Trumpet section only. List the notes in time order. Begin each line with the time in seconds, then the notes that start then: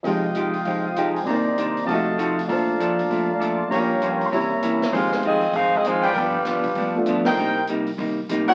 0.05 F4 D#5 G5
0.65 C5 F5
0.86 D#6
0.96 C6
1.06 A#5
1.16 G#5
1.26 D#4 C5 D5 A#5
1.57 C6
1.72 D6
1.87 F#4 D#5 F5 A5
2.18 C6
2.29 D#6
2.38 F5
2.48 D5 F5 A5 A#5
3.25 F5
3.40 D6
3.57 C6
3.71 G4 C#5 F5 A#5
4.02 C6
4.17 C#6
4.33 E4 C#5 A#5
6.03 F4 B4 D5 G5
7.26 D#4 A#4 C5 G5
8.48 D#4 A#4 C#5 F#5